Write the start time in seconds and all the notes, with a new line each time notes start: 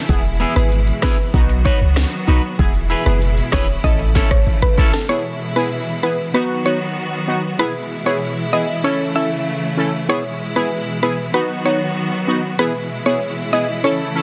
Already playing: E3 E4
0.09 E1 B2 G#3 B3 E4 G#4, kick, closed hi-hat
0.25 closed hi-hat
0.40 B3 E4 G#4, closed hi-hat
0.56 G#1 B3 E4 G#4 B4
0.72 closed hi-hat
0.87 closed hi-hat
1.02 B3 E4 G#4 B4, kick, cross-stick, snare, closed hi-hat
1.34 B1 D#3 F#3 B3 D#4 F#4, kick, closed hi-hat
1.49 muted clean electric guitar stroke, closed hi-hat
1.65 B3 D#4 F#4 B4 C#5, kick, closed hi-hat
1.81 C#2
1.96 cross-stick, snare, closed hi-hat
2.12 closed hi-hat
2.27 B1 B3 D#4 F#4 B4, closed hi-hat
2.59 E1 B2 E3 G#3 B3 E4 G#4, kick, closed hi-hat
2.75 closed hi-hat
2.90 E4 G#4 B4, closed hi-hat
3.06 F#1 B3 E4 G#4 B4
3.22 closed hi-hat
3.37 closed hi-hat
3.52 E1 B3 E4 G#4 B4 C#5, kick, cross-stick, snare, closed hi-hat
3.84 A1 C#3 E3 A3 C#4 E4 A4 D#5, kick, closed hi-hat
3.99 muted clean electric guitar stroke, closed hi-hat
4.15 C#4 E4 A4, kick, snare, closed hi-hat
4.31 G#1 C#5, kick, cross-stick
4.47 kick, closed hi-hat
4.62 B4, kick, closed hi-hat
4.77 C#4 E4 A4, kick, closed hi-hat
4.93 A4, snare
5.09 B2 E3 G#3 B3 E4 G#4 C#5
5.56 B3 E4 G#4 B4
6.03 B3 E4 G#4 B4
6.34 D#3 F#3 B3 D#4 F#4 B4
6.65 B3 D#4 F#4 C#5
7.28 B3 D#4 F#4
7.59 B2 E3 G#3 B3 E4 G#4 B4
8.06 B3 E4 G#4 C#5
8.52 B3 E4 G#4 D#5
8.84 C#3 A3 C#4 E4 A4 C#5
9.15 C#4 E4 A4 E5
9.77 C#4 E4 A4
10.09 B2 G#3 B3 E4 G#4 C#5
10.56 B3 E4 G#4 B4
11.02 B3 E4 G#4 B4
11.34 D#3 F#3 B3 D#4 F#4 B4
11.65 B3 D#4 F#4 C#5
12.27 B3 D#4 F#4
12.59 B2 E3 G#3 B3 E4 G#4 B4
13.06 B3 E4 G#4 C#5
13.53 B3 E4 G#4 D#5
13.84 C#3 A3 C#4 E4 A4 C#5
14.15 C#4 E4 A4